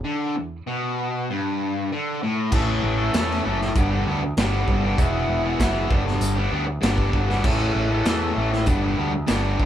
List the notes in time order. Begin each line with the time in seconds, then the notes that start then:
0.05 D3
0.36 E2
0.67 B2
1.30 G2
1.92 D3
2.23 A2
2.52 A1 A2 E3 A3 C#4 A4, kick, crash
2.83 A1
2.98 A3 C#4 A4
3.12 E2 A2 E3 A3 C#4 A4, snare, closed hi-hat
3.31 snare
3.44 F#1 E3 A3 C#4 A4
3.61 muted distorted electric guitar stroke, snare
3.75 G1 G2 D3 G3 B3 D4 G4, kick, closed hi-hat
3.91 G3 B3 D4 G4
4.07 D2 G3 B3 D4 G4
4.23 muted distorted electric guitar stroke
4.37 G1 G2 D3 G3 B3 D4, snare, closed hi-hat
4.41 G4
4.68 G1, kick
4.84 G3 B3 D4 G4
4.98 E1 E2 B2 E3 B3 E4 G#4, kick, closed hi-hat
5.28 E1
5.44 E3 B3 E4 G#4
5.59 F#1 E2 B2 E3 B3 E4 G#4, kick, snare, closed hi-hat
5.89 G1 G2 D3 G3 B3 D4 G4, kick
6.05 muted distorted electric guitar stroke, snare
6.21 G1, closed hi-hat
6.35 G3 B3 D4 G4
6.50 D2 G3 B3 D4 G4
6.67 muted distorted electric guitar stroke
6.81 G1 G2 D3 G3 B3 D4 G4, snare, closed hi-hat
6.98 kick
7.13 G1, kick
7.27 G3 B3 D4 G4, snare
7.43 A1 A2 E3 A3 C#4 A4, kick, crash
7.75 A1
7.90 A3 C#4 A4
8.05 E2 A2 E3 A3 C#4 A4, snare, closed hi-hat
8.36 A1 E3 A3 C#4 A4
8.52 muted distorted electric guitar stroke, snare
8.66 G1 G2 D3 G3 B3 D4 G4, kick, closed hi-hat
8.81 G3 B3 D4 G4
8.96 D2 G3 B3 D4 G4
9.13 muted distorted electric guitar stroke
9.26 G1 G2 D3 G3 B3 D4 G4, snare, closed hi-hat
9.60 D#2, kick